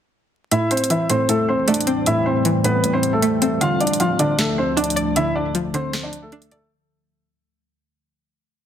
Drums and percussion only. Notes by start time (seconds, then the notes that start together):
0.52 closed hi-hat
0.71 closed hi-hat
0.77 closed hi-hat
0.84 closed hi-hat
0.90 closed hi-hat
1.10 closed hi-hat
1.29 closed hi-hat
1.68 closed hi-hat
1.74 closed hi-hat
1.81 closed hi-hat
1.87 closed hi-hat
2.06 closed hi-hat
2.45 closed hi-hat
2.64 closed hi-hat
2.84 closed hi-hat
3.03 closed hi-hat
3.22 closed hi-hat
3.42 closed hi-hat
3.61 closed hi-hat
3.81 closed hi-hat
3.87 closed hi-hat
3.93 closed hi-hat
4.00 closed hi-hat
4.19 closed hi-hat
4.39 snare, closed hi-hat
4.77 closed hi-hat
4.84 closed hi-hat
4.90 closed hi-hat
4.97 closed hi-hat
5.16 closed hi-hat
5.55 closed hi-hat
5.74 closed hi-hat
5.93 snare, closed hi-hat
6.13 closed hi-hat
6.32 closed hi-hat
6.42 closed hi-hat
6.51 closed hi-hat